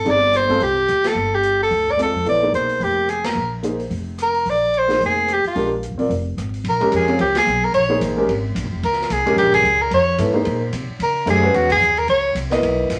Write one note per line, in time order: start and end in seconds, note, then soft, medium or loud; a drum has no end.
0.00 0.12 A4 medium
0.04 0.58 G1 medium
0.04 0.20 C4 medium
0.04 0.20 D#4 medium
0.04 0.21 G#4 medium
0.04 0.21 D5 medium
0.04 open hi-hat soft
0.10 0.38 D5 medium
0.33 0.65 C5 medium
0.33 snare soft
0.33 closed hi-hat soft
0.48 0.59 G#3 medium
0.48 0.60 C4 medium
0.48 0.60 F4 medium
0.48 0.60 A4 medium
0.48 kick soft
0.48 open hi-hat soft
0.60 0.86 C2 medium
0.60 1.09 G4 medium
0.60 open hi-hat soft
0.88 1.14 D2 medium
0.88 cross-stick medium
0.88 closed hi-hat soft
1.04 1.37 A4 medium
1.04 snare medium
1.04 ride medium
1.15 1.68 G1 medium
1.35 1.61 G4 medium
1.43 closed hi-hat soft
1.63 1.93 A4 medium
1.71 2.11 D2 medium
1.71 open hi-hat soft
1.87 kick soft
1.91 2.00 D5 medium
1.97 2.12 G#3 soft
1.97 2.13 C4 soft
1.97 2.13 F4 soft
1.97 2.13 A4 medium
1.97 cross-stick soft
1.97 closed hi-hat soft
2.03 2.26 A4 medium
2.14 2.25 F2 medium
2.25 2.51 A#1 medium
2.25 2.40 B3 soft
2.25 2.40 E4 soft
2.25 2.40 A4 soft
2.25 2.41 C#5 soft
2.25 2.53 D5 medium
2.25 open hi-hat soft
2.42 3.01 A#3 soft
2.42 3.02 D#4 soft
2.42 3.02 G#4 soft
2.42 3.02 C5 soft
2.53 2.78 B1 medium
2.53 2.85 C5 medium
2.53 closed hi-hat soft
2.69 open hi-hat soft
2.80 3.32 F1 medium
2.80 3.11 G4 medium
2.80 open hi-hat soft
3.08 3.27 G#4 medium
3.08 cross-stick medium
3.08 closed hi-hat soft
3.24 3.52 A#4 medium
3.24 snare medium
3.24 ride medium
3.35 3.87 A#1 medium
3.63 3.77 A#3 soft
3.63 3.78 D#4 soft
3.63 3.78 G#4 soft
3.63 3.78 C5 medium
3.63 closed hi-hat soft
3.79 open hi-hat soft
3.90 4.42 F1 medium
3.90 open hi-hat soft
4.18 cross-stick medium
4.18 closed hi-hat soft
4.23 4.51 A#4 medium
4.34 open hi-hat soft
4.46 4.98 A#1 medium
4.46 open hi-hat soft
4.50 4.80 D5 medium
4.74 closed hi-hat soft
4.78 5.03 C5 medium
4.88 5.25 A#3 medium
4.88 5.25 D#4 soft
4.88 5.26 G#4 soft
4.88 5.26 C5 medium
4.88 snare soft
4.88 open hi-hat soft
5.00 5.41 F1 medium
5.00 open hi-hat soft
5.06 5.35 G#4 medium
5.28 cross-stick soft
5.28 closed hi-hat soft
5.33 5.46 G4 medium
5.44 5.71 F4 medium
5.44 muted upright bass stroke soft
5.44 open hi-hat soft
5.55 5.89 A#1 medium
5.55 5.69 G#3 medium
5.55 5.70 D4 soft
5.55 5.70 G4 medium
5.55 5.70 A#4 medium
5.55 open hi-hat soft
5.83 closed hi-hat soft
5.92 6.00 C2 medium
5.98 6.09 B1 medium
5.98 6.08 C4 medium
5.98 6.09 F4 medium
5.98 6.09 A#4 medium
5.98 6.09 D5 medium
5.98 open hi-hat soft
6.09 6.35 F1 medium
6.09 open hi-hat soft
6.37 6.62 G#1 medium
6.37 cross-stick medium
6.37 closed hi-hat soft
6.54 open hi-hat soft
6.64 6.79 A#1 medium
6.64 ride medium
6.69 6.92 A#4 medium
6.80 7.06 G#3 medium
6.80 7.07 C#4 medium
6.80 7.07 G4 medium
6.80 7.07 A#4 medium
6.80 muted upright bass stroke soft
6.80 ride soft
6.92 7.19 F2 medium
6.92 hi-hat pedal soft
6.92 ride medium
6.96 7.20 G#4 medium
7.07 7.18 C4 medium
7.07 7.18 F4 medium
7.07 7.19 A#4 medium
7.07 7.19 C#5 medium
7.07 ride soft
7.19 7.46 C#2 medium
7.19 7.35 G4 medium
7.19 ride medium
7.35 7.66 G#4 medium
7.35 snare medium
7.35 ride medium
7.46 7.73 B1 medium
7.46 hi-hat pedal soft
7.65 7.74 A#4 medium
7.73 8.00 A#1 medium
7.73 8.00 C#5 medium
7.73 ride medium
7.89 8.15 A#3 medium
7.89 8.15 D#4 medium
7.89 8.16 G#4 medium
7.89 8.16 C5 medium
8.01 8.27 A1 medium
8.01 hi-hat pedal soft
8.01 ride medium
8.16 8.27 G#3 medium
8.16 8.27 C#4 medium
8.16 8.27 G4 medium
8.16 8.28 A#4 medium
8.28 8.54 G#1 medium
8.28 ride medium
8.55 8.63 A#1 medium
8.55 hi-hat pedal medium
8.55 ride medium
8.63 8.72 G#1 medium
8.73 8.82 F1 medium
8.83 9.09 C#2 medium
8.83 9.14 A#4 medium
8.83 ride medium
8.93 snare soft
9.01 snare soft
9.10 9.36 C2 medium
9.10 9.37 G#4 medium
9.10 hi-hat pedal medium
9.10 ride medium
9.26 9.62 G#3 medium
9.26 9.62 C#4 medium
9.26 9.62 G4 medium
9.26 9.63 A#4 medium
9.26 kick medium
9.26 ride soft
9.36 9.63 A#1 medium
9.36 9.53 G4 medium
9.36 ride medium
9.53 9.83 G#4 medium
9.53 kick medium
9.53 ride medium
9.63 9.90 C#2 medium
9.63 hi-hat pedal medium
9.82 9.92 A#4 medium
9.91 10.18 F2 medium
9.91 10.18 C#5 medium
9.91 ride medium
10.18 10.45 G#2 medium
10.18 10.33 B3 medium
10.18 10.33 E4 medium
10.18 10.33 A4 medium
10.18 10.34 C#5 medium
10.18 hi-hat pedal medium
10.18 ride medium
10.33 10.58 A#3 medium
10.33 10.59 D#4 medium
10.33 10.59 G#4 medium
10.33 10.59 C5 medium
10.45 10.72 A#2 medium
10.45 ride medium
10.72 10.88 C3 medium
10.72 hi-hat pedal medium
10.72 ride medium
10.88 muted upright bass stroke soft
10.99 11.25 C#3 medium
10.99 11.27 A#4 medium
10.99 ride medium
11.26 11.53 F#2 medium
11.26 11.41 A3 medium
11.26 11.42 D4 medium
11.26 11.42 G4 medium
11.26 11.42 C5 medium
11.26 hi-hat pedal medium
11.26 ride medium
11.30 11.57 G#4 medium
11.42 11.67 G#3 medium
11.42 11.67 C#4 medium
11.42 11.67 F#4 medium
11.42 11.68 B4 medium
11.54 11.80 E2 medium
11.54 11.71 F#4 medium
11.54 ride medium
11.70 12.00 G#4 medium
11.70 kick medium
11.70 ride medium
11.81 12.08 D#2 medium
11.81 hi-hat pedal medium
11.97 12.09 A#4 medium
11.97 ride soft
12.08 12.34 C#2 medium
12.08 12.35 C#5 medium
12.08 ride medium
12.35 12.62 C2 medium
12.35 hi-hat pedal medium
12.35 ride medium
12.50 12.87 B3 medium
12.50 12.88 E4 medium
12.50 12.88 A#4 medium
12.50 12.88 D#5 medium
12.50 snare medium
12.50 ride soft
12.62 12.89 B1 medium
12.62 ride medium
12.89 12.99 A#1 medium
12.89 snare soft
12.89 hi-hat pedal soft
12.89 ride medium